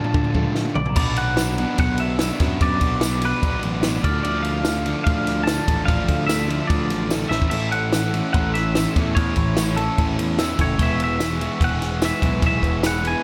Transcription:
Already playing: overdriven electric guitar D3 F3 A3 D4, analog synth pad D3 D4 A4 F5, clean electric guitar A5
0.04 floor tom
0.14 picked electric bass D3, kick
0.24 floor tom
0.34 picked electric bass C#2, overdriven electric guitar D3 F3 A3 D4, kick, mid tom
0.55 snare
0.65 high tom
0.75 picked electric bass B1, analog synth pad B3 B4 D5 F#5, clean electric guitar D5, mid tom
0.86 glockenspiel A#5, floor tom
0.96 picked electric bass B1, overdriven electric guitar B2 F#3 B3 D4, analog synth pad F#4 B4 D5 B5, clean electric guitar D5, glockenspiel B5, kick, crash
1.16 clean electric guitar F#5, ride
1.37 overdriven electric guitar B2 F#3 B3 D4, snare, ride, tambourine
1.58 overdriven electric guitar B2 F#3 B3 D4, ride
1.78 picked electric bass B1, overdriven electric guitar B2 F#3 B3 D4, clean electric guitar F#5, kick, ride
1.98 clean electric guitar E5, ride
2.19 overdriven electric guitar B2 F#3 B3 D4, snare, ride, tambourine
2.40 picked electric bass F#2, overdriven electric guitar B2 F#3 B3 D4, kick, snare, ride
2.61 picked electric bass F#2, overdriven electric guitar B2 F#3 B3 D4, clean electric guitar D5, glockenspiel D6, kick, ride
2.81 picked electric bass B1, kick, ride
3.01 overdriven electric guitar B2 F#3 B3 D4, snare, ride, tambourine
3.22 overdriven electric guitar B2 F#3 B3 D4, clean electric guitar B4, ride
3.43 picked electric bass B1, overdriven electric guitar B2 F#3 B3 D4, kick, ride
3.63 picked electric bass A1, ride
3.83 overdriven electric guitar B2 F#3 B3 D4, snare, ride, tambourine
4.03 picked electric bass D2, overdriven electric guitar D3 F3 A3 D4, analog synth pad F4 A4 A5, clean electric guitar D5, glockenspiel F6, kick, ride
4.23 picked electric bass D2, overdriven electric guitar D3 F3 A3 D4, clean electric guitar D5, ride
4.42 clean electric guitar F5, ride
4.65 overdriven electric guitar D3 F3 A3 D4, snare, ride, tambourine
4.86 overdriven electric guitar D3 F3 A3 D4, ride
5.04 picked electric bass D2, overdriven electric guitar D3 F3 A3 D4, clean electric guitar F5, kick, ride
5.27 snare, ride
5.44 clean electric guitar A5, snare, ride
5.48 overdriven electric guitar D3 F3 A3 D4, tambourine
5.68 picked electric bass A1, overdriven electric guitar D3 F3 A3 D4, kick, ride
5.85 picked electric bass A1, overdriven electric guitar D3 F3 A3 D4, clean electric guitar F5, kick, ride
6.08 picked electric bass D2, kick, ride
6.27 overdriven electric guitar D3 F3 A3 D4, clean electric guitar E5, snare, ride, tambourine
6.48 overdriven electric guitar D3 F3 A3 D4, ride
6.67 picked electric bass D2, overdriven electric guitar D3 F3 A3 D4, clean electric guitar D5, kick, ride
6.89 picked electric bass A1, snare, ride
7.10 overdriven electric guitar D3 F3 A3 D4, snare, ride, tambourine
7.29 picked electric bass A1, overdriven electric guitar A2 E3 A3, analog synth pad E4 C#5, clean electric guitar E5, glockenspiel E6, snare
7.34 overdriven electric guitar C#4 E4
7.42 kick
7.50 picked electric bass A1, overdriven electric guitar A2 E3 A3 C#4 E4, clean electric guitar E5, crash
7.72 clean electric guitar F#5, ride
7.93 overdriven electric guitar A2 E3 A3 C#4 E4, snare, ride, tambourine
8.14 overdriven electric guitar A2 E3 A3 C#4 E4, ride
8.33 picked electric bass A1, overdriven electric guitar A2 E3 A3 C#4 E4, clean electric guitar F#5, kick, ride
8.54 clean electric guitar E5, snare, ride
8.75 overdriven electric guitar A2 E3 A3 C#4 E4, snare, ride, tambourine
8.96 picked electric bass E2, overdriven electric guitar A2 E3 A3 C#4 E4, kick, ride
9.15 picked electric bass E2, overdriven electric guitar A2 E3 A3 C#4 E4, clean electric guitar C#5, kick, ride
9.36 picked electric bass A1, kick, ride
9.57 overdriven electric guitar A2 E3 A3 C#4 E4, snare, ride, tambourine
9.76 overdriven electric guitar A2 E3 A3 C#4 E4, clean electric guitar A4, ride
9.98 picked electric bass A1, overdriven electric guitar A2 E3 A3 C#4 E4, kick, ride
10.19 picked electric bass E2, ride
10.38 overdriven electric guitar A2 E3 A3 C#4 E4, glockenspiel E6, snare, ride, tambourine
10.58 picked electric bass F#1, overdriven electric guitar A2 E3 A3 C#4 E4, clean electric guitar C#5, kick, ride
10.79 picked electric bass E1, overdriven electric guitar E3 G#3 B3 E4, analog synth pad G#4 B4 G#5, glockenspiel C#6, kick, ride
10.83 clean electric guitar E5
11.00 ride
11.04 clean electric guitar E5
11.19 overdriven electric guitar E3 G#3 B3 E4, snare, ride, tambourine
11.40 overdriven electric guitar E3 G#3 B3 E4, ride
11.60 picked electric bass E1, overdriven electric guitar E3 G#3 B3 E4, clean electric guitar F#5, kick, ride
11.82 snare, ride
12.01 overdriven electric guitar E3 G#3 B3 E4, clean electric guitar E5, snare, ride, tambourine
12.21 picked electric bass B1, overdriven electric guitar E3 G#3 B3 E4, kick, ride
12.41 picked electric bass B1, overdriven electric guitar E3 G#3 B3 E4, kick, ride
12.47 clean electric guitar E5
12.62 picked electric bass E1, kick, ride
12.83 overdriven electric guitar E3 G#3 B3 E4, clean electric guitar F#5, glockenspiel B5, snare, ride, tambourine
13.03 overdriven electric guitar E3 G#3 B3 E4, ride
13.07 clean electric guitar G#5

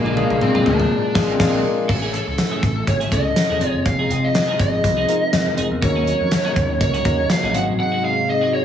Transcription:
Already playing: picked electric bass A#1, tine electric piano A#2 G#3 A#3 D4 F4 G#4, overdriven electric guitar A#2 F3 A#3, lead electric guitar A#3, analog synth pad A#4 F5 G#5 D6
0.05 clean electric guitar G#3 D4 F4, high tom
0.16 tine electric piano G#3 A#3 D4 F4 G#4, clean electric guitar G#3 D4 F4, high tom
0.30 picked electric bass A#1, muted clean electric guitar stroke, high tom
0.41 lead electric guitar C4, muted clean electric guitar stroke, mid tom
0.55 clean electric guitar G#3 D4 F4, mid tom
0.66 picked electric bass D2, lead electric guitar D4, muted clean electric guitar stroke, mid tom
0.80 muted clean electric guitar stroke, mid tom
1.14 picked electric bass A#1, overdriven electric guitar F3 A#3, tine electric piano G#3 A#3 D4 F4 G#4, clean electric guitar G#3 D4 F4, kick, snare, crash
1.33 lead electric guitar C4
1.39 picked electric bass A#1, overdriven electric guitar F3 A#3, tine electric piano G#3 A#3 D4 F4 G#4, clean electric guitar G#3 D4 F4, kick, snare, crash
1.88 picked electric bass A1, tine electric piano A2 A3 C#4 E4 F#4, analog synth pad C#3 E3 A3 E4, lead electric guitar A4, muted clean electric guitar stroke, kick, crash
1.95 tine electric piano G#5
2.02 clean electric guitar C#4 E4 G#4
2.13 clean electric guitar C#4 E4 G#4, lead electric guitar A4, closed hi-hat
2.27 picked electric bass C#2, muted clean electric guitar stroke
2.38 muted clean electric guitar stroke, snare, closed hi-hat
2.51 clean electric guitar C#4 E4 G#4
2.63 picked electric bass A1, muted clean electric guitar stroke, kick, closed hi-hat
2.76 muted clean electric guitar stroke
2.87 picked electric bass G#1, lead electric guitar C#5, muted clean electric guitar stroke, kick, closed hi-hat
3.00 clean electric guitar C#4 E4 G#4, closed hi-hat
3.11 picked electric bass C#2, tine electric piano A3 C#4 E4 A4, clean electric guitar C#4 E4 G#4, lead electric guitar D#5, kick, closed hi-hat
3.25 muted clean electric guitar stroke
3.36 muted clean electric guitar stroke, snare, closed hi-hat
3.50 picked electric bass E1, clean electric guitar C#4 E4 G#4
3.61 picked electric bass F1, analog synth pad C3 F3 G#3 D#4, tine electric piano C4 D#4 F4 G#4, clean electric guitar C4 D#4 G#4, closed hi-hat
3.69 lead electric guitar C#5
3.75 picked electric bass F#1, muted clean electric guitar stroke
3.86 picked electric bass F1, lead electric guitar F5, muted clean electric guitar stroke, kick, closed hi-hat
3.99 clean electric guitar C4 D#4 G#4
4.10 picked electric bass F1, clean electric guitar C4 D#4 G#4, closed hi-hat
4.23 lead electric guitar D#5, muted clean electric guitar stroke
4.35 muted clean electric guitar stroke, snare, closed hi-hat
4.48 clean electric guitar C4 D#4 G#4
4.59 picked electric bass G#1, lead electric guitar D#5, muted clean electric guitar stroke, kick, closed hi-hat
4.72 muted clean electric guitar stroke
4.84 picked electric bass C2, muted clean electric guitar stroke, kick, closed hi-hat
4.97 clean electric guitar C4 D#4 G#4
5.08 tine electric piano C4 D#4 F4 A#4, clean electric guitar C4 D#4 G#4, closed hi-hat
5.22 muted clean electric guitar stroke
5.33 picked electric bass F2, muted clean electric guitar stroke, snare, closed hi-hat
5.46 muted clean electric guitar stroke
5.57 picked electric bass F1, clean electric guitar C4 D#4 G#4, closed hi-hat
5.71 picked electric bass E2, muted clean electric guitar stroke
5.82 picked electric bass D#2, analog synth pad C#3 F#3 A#3 D#4, tine electric piano D#3 C#4 D#4 F#4 A#4, lead electric guitar C#5, kick, closed hi-hat
5.95 clean electric guitar A#3 C#4 F#4
6.06 clean electric guitar A#3 C#4 F#4, closed hi-hat
6.20 picked electric bass F2, muted clean electric guitar stroke
6.31 muted clean electric guitar stroke, snare, closed hi-hat
6.44 clean electric guitar A#3 C#4 F#4
6.56 picked electric bass D#2, muted clean electric guitar stroke, kick, closed hi-hat
6.69 muted clean electric guitar stroke
6.80 picked electric bass C#2, lead electric guitar C#5, muted clean electric guitar stroke, kick, closed hi-hat
6.94 clean electric guitar A#3 C#4 F#4, closed hi-hat
7.05 picked electric bass D#2, clean electric guitar A#3 C#4 F#4, tine electric piano C#4 D#4 F#4 A#4, kick, closed hi-hat
7.18 muted clean electric guitar stroke
7.30 lead electric guitar F5, muted clean electric guitar stroke, snare, closed hi-hat
7.43 picked electric bass A#1, clean electric guitar A#3 C#4 F#4
7.54 picked electric bass G#1, tine electric piano G#2 C4 D#4 F#4 G#4, analog synth pad C3 G#3, clean electric guitar G#3 C4 F#4, lead electric guitar F#5, closed hi-hat
7.68 picked electric bass A1, muted clean electric guitar stroke
7.79 lead electric guitar F#5, muted clean electric guitar stroke
7.92 clean electric guitar G#3 C4 F#4
8.03 clean electric guitar G#3 C4 F#4, lead electric guitar F5
8.17 muted clean electric guitar stroke
8.28 lead electric guitar D#5, muted clean electric guitar stroke
8.41 clean electric guitar G#3 C4 F#4
8.53 lead electric guitar C#5, muted clean electric guitar stroke

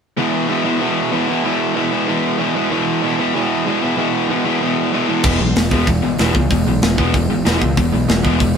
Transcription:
0.17 distorted electric guitar E2 B2 E3, overdriven electric guitar E3 G#3 B3 E4
0.48 distorted electric guitar E2 B2 E3, overdriven electric guitar E3 G#3 B3 E4
0.64 distorted electric guitar E2 B2 E3, overdriven electric guitar E3 G#3 B3 E4
0.80 distorted electric guitar E2 B2 E3, overdriven electric guitar E3 G#3 B3 E4
1.12 distorted electric guitar E2 B2 E3, overdriven electric guitar E3 G#3 B3 E4
1.27 distorted electric guitar E2 B2 E3, overdriven electric guitar E3 G#3 B3 E4
1.44 distorted electric guitar E2 B2 E3, overdriven electric guitar E3 G#3 B3 E4
1.75 distorted electric guitar E2 B2 E3, overdriven electric guitar E3 G#3 B3 E4
1.91 distorted electric guitar E2 B2 E3, overdriven electric guitar E3 G#3 B3 E4
2.07 distorted electric guitar E2 B2 E3, overdriven electric guitar E3 G#3 B3 E4
2.38 distorted electric guitar E2 B2 E3, overdriven electric guitar E3 G#3 B3 E4
2.55 distorted electric guitar E2 B2 E3, overdriven electric guitar E3 G#3 B3 E4
2.70 distorted electric guitar E2 B2 E3, overdriven electric guitar E3 G#3 B3 E4
3.02 distorted electric guitar E2 B2 E3, overdriven electric guitar E3 G#3 B3 E4
3.18 distorted electric guitar E2 B2 E3, overdriven electric guitar E3 G#3 B3 E4
3.34 distorted electric guitar E2 B2 E3, overdriven electric guitar E3 G#3 B3 E4
3.66 distorted electric guitar E2 B2 E3, overdriven electric guitar E3 G#3 B3 E4
3.81 distorted electric guitar E2 B2 E3, overdriven electric guitar E3 G#3 B3 E4
3.97 distorted electric guitar E2 B2 E3, overdriven electric guitar E3 G#3 B3 E4
4.28 distorted electric guitar E2 B2 E3, overdriven electric guitar E3 G#3 B3 E4
4.45 distorted electric guitar E2 B2 E3, overdriven electric guitar E3 G#3 B3 E4
4.61 distorted electric guitar E2 B2 E3, overdriven electric guitar E3 G#3 B3 E4
4.93 distorted electric guitar E2 B2 E3, overdriven electric guitar E3 G#3 B3 E4
5.08 distorted electric guitar E2 B2 E3, overdriven electric guitar E3 G#3 B3 E4
5.23 picked electric bass E1, distorted electric guitar E2 B2 E3, overdriven electric guitar E3 G#3 B3, kick, crash
5.40 picked electric bass B1, distorted electric guitar E2 B2, overdriven electric guitar E3 G#3
5.55 picked electric bass E1, distorted electric guitar E2 B2, overdriven electric guitar E3 G#3, snare, open hi-hat
5.71 picked electric bass E1, distorted electric guitar E2 B2 E3, overdriven electric guitar E3 G#3 B3, kick
5.87 picked electric bass E1, distorted electric guitar E2 B2, overdriven electric guitar E3 G#3, kick, open hi-hat
6.02 picked electric bass G#1, distorted electric guitar E2 B2, overdriven electric guitar E3 G#3
6.18 picked electric bass E1, distorted electric guitar E2 B2 E3, overdriven electric guitar E3 G#3 B3, snare, open hi-hat
6.35 picked electric bass C#2, distorted electric guitar E2 B2, overdriven electric guitar E3 G#3, kick
6.50 picked electric bass E1, distorted electric guitar E2 B2, overdriven electric guitar E3 G#3, kick, open hi-hat
6.67 picked electric bass B1, distorted electric guitar E2 B2, overdriven electric guitar E3 G#3
6.82 picked electric bass E1, distorted electric guitar E2 B2, overdriven electric guitar E3 G#3, snare, open hi-hat
6.97 picked electric bass E1, distorted electric guitar E2 B2 E3, overdriven electric guitar E3 G#3 B3, kick
7.14 picked electric bass E1, distorted electric guitar E2 B2, overdriven electric guitar E3 G#3, kick, open hi-hat
7.30 picked electric bass G#1, distorted electric guitar E2 B2, overdriven electric guitar E3 G#3
7.45 picked electric bass E1, distorted electric guitar E2 B2 E3, overdriven electric guitar E3 G#3 B3, snare, open hi-hat
7.61 picked electric bass C#2, distorted electric guitar E2 B2, overdriven electric guitar E3 G#3, kick
7.77 picked electric bass E1, distorted electric guitar E2 B2, overdriven electric guitar E3 G#3, kick, open hi-hat
7.92 picked electric bass B1, distorted electric guitar E2 B2, overdriven electric guitar E3 G#3
8.08 picked electric bass E1, distorted electric guitar E2 B2, overdriven electric guitar E3 G#3, snare, open hi-hat
8.23 picked electric bass E1, distorted electric guitar E2 B2 E3, overdriven electric guitar E3 G#3 B3, kick
8.39 picked electric bass E1, distorted electric guitar E2 B2, overdriven electric guitar E3 G#3, kick, open hi-hat

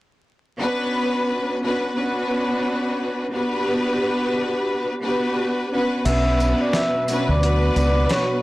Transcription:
0.59 string section B3 C#4 D4 F#4 B4
1.62 string section B3 C#4 D4 F#4 B4
1.95 string section B3 C#4 D4 F#4 B4
3.31 string section B3 D4 F#4 G4 B4
5.01 string section B3 D4 F#4 G4 B4
5.70 string section B3 C#4 D4 F#4 B4
6.04 fingered electric bass B1, analog synth pad B2 B3 F#4, string section B3 C#4 D4 F#4 B4, vibraphone E5 E6, closed hi-hat, crash
6.40 tambourine, shaker
6.61 vibraphone D5 D6
6.73 vibraphone E5 E6, snare, closed hi-hat
7.07 string section B3 C#4 D4 F#4 B4, closed hi-hat, tambourine, shaker
7.29 fingered electric bass D2, vibraphone D5 D6
7.41 string section B3 D4 F#4 B4, closed hi-hat
7.76 fingered electric bass C#2, vibraphone D5 D6, closed hi-hat, tambourine, shaker
8.09 vibraphone C#5 C#6, snare, closed hi-hat

